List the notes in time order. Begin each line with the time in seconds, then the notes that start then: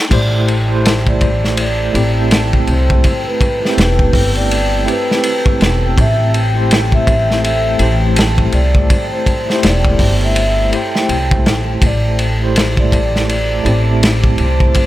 0.11 A1 A3 E4 G4 A4 C5 D5 G5 A5, kick, crash, ride
0.48 ride
0.68 A3 E4 G4
0.72 C5
0.85 snare, ride
1.07 D5, kick
1.21 kick, ride
1.44 snare
1.57 D5, ride
1.92 A1 A3 E4 G4, ride
1.97 C4
2.31 snare, ride
2.53 kick
2.67 C2 C5, ride
2.90 kick
3.04 kick, ride
3.27 B4
3.41 kick, ride
3.60 A3 E4 G4
3.65 C4, snare
3.78 E1 B4, snare, ride
3.99 kick
4.13 G1, kick, open hi-hat
4.35 D5, ride
4.51 ride
4.85 A3 E4 G4, ride
4.89 C4 B4
5.11 snare
5.24 ride
5.46 kick
5.60 E1, snare, ride
5.97 A1 E5, kick, ride
6.34 ride
6.53 A3 E4 G4 C5
6.71 snare, ride
6.92 E5, kick
7.07 kick, ride
7.31 snare
7.44 E5, ride
7.78 A1 A3 E4 G4, ride
7.83 C5
8.16 snare, ride
8.38 kick
8.52 C2 D5, ride
8.75 kick
8.90 kick, ride
9.12 C5
9.26 kick, ride
9.46 A3 E4 G4 C5, snare
9.63 E1 D5, snare, ride
9.85 kick
9.99 G1, kick, open hi-hat
10.21 E5, ride
10.36 ride
10.71 A3 E4 G4 C5, ride
10.76 G5
10.96 snare
11.09 C2, ride
11.31 kick
11.46 A1, snare, ride
11.82 A1 D5 A5 D6, kick, ride
12.19 ride
12.40 A3 E4 G4
12.44 C5
12.56 snare, ride
12.77 D5, kick
12.92 kick, ride
13.16 snare
13.29 D5, ride
13.63 A1 A3 E4 G4, ride
13.68 C4
14.03 snare, ride
14.24 kick
14.38 C2 C5, ride
14.60 kick
14.74 kick, ride